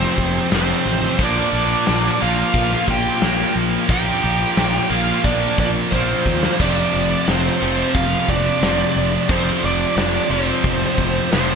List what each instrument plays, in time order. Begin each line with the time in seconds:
Already playing: distorted electric guitar F2 C3 F3, lead electric guitar C4 C5
0.02 snare
0.17 fingered electric bass F1, kick, open hi-hat
0.51 fingered electric bass F1, distorted electric guitar F2 C3 F3, snare, open hi-hat
0.56 lead electric guitar C4 C5
0.86 fingered electric bass A1, open hi-hat
1.03 snare
1.18 fingered electric bass A#1, distorted electric guitar A#2 F3, lead electric guitar D4, kick, open hi-hat
1.23 distorted electric guitar A#3, lead electric guitar D5
1.53 fingered electric bass A#1, open hi-hat
1.86 fingered electric bass A#1, snare, open hi-hat
2.20 fingered electric bass A#1, distorted electric guitar A#2 F3 A#3, lead electric guitar F4 F5, open hi-hat
2.53 fingered electric bass A#1, kick, open hi-hat
2.71 snare
2.87 fingered electric bass A#1, lead electric guitar G4 G5, kick, open hi-hat
3.21 fingered electric bass A#1, distorted electric guitar A#2 F3 A#3, snare, open hi-hat
3.55 fingered electric bass A#1, open hi-hat
3.89 fingered electric bass A#1, distorted electric guitar A#2 F3 A#3, lead electric guitar G4 G5, kick, open hi-hat
4.23 fingered electric bass A#1, open hi-hat
4.57 fingered electric bass A#1, snare, open hi-hat
4.90 fingered electric bass A#1, distorted electric guitar A#2 F3 A#3, lead electric guitar F4 F5, open hi-hat
5.24 fingered electric bass A#1, lead electric guitar D4 D5, kick, open hi-hat
5.58 fingered electric bass A#1, lead electric guitar D4 D5, kick, open hi-hat
5.91 fingered electric bass A#1, distorted electric guitar A#2 F3, lead electric guitar C4 C5, kick
5.96 distorted electric guitar A#3
6.26 fingered electric bass D#2, kick
6.43 snare
6.59 fingered electric bass F1, distorted electric guitar F2 C3 F3, lead electric guitar D4 D5, kick, open hi-hat, crash
6.94 fingered electric bass F1, open hi-hat
7.27 fingered electric bass F1, lead electric guitar C4 C5, snare, open hi-hat
7.60 fingered electric bass F1, distorted electric guitar F2 C3 F3, open hi-hat
7.94 fingered electric bass F1, lead electric guitar F4 F5, kick, open hi-hat
8.29 fingered electric bass F1, lead electric guitar D4 D5, kick, open hi-hat
8.62 fingered electric bass F1, distorted electric guitar F2 C3 F3, snare, open hi-hat
8.96 fingered electric bass F1, open hi-hat
9.28 fingered electric bass F1, distorted electric guitar F2 C3 F3, lead electric guitar C4 C5, kick, open hi-hat
9.63 fingered electric bass F1, lead electric guitar D4 D5, open hi-hat
9.96 fingered electric bass F1, lead electric guitar D4 D5, snare, open hi-hat
10.30 fingered electric bass F1, distorted electric guitar F2 C3 F3, lead electric guitar C4 C5, open hi-hat
10.64 fingered electric bass F1, kick, open hi-hat
10.82 snare
10.98 fingered electric bass F1, kick, open hi-hat
11.31 fingered electric bass F1, distorted electric guitar F2 C3 F3, lead electric guitar C4 C5, snare, open hi-hat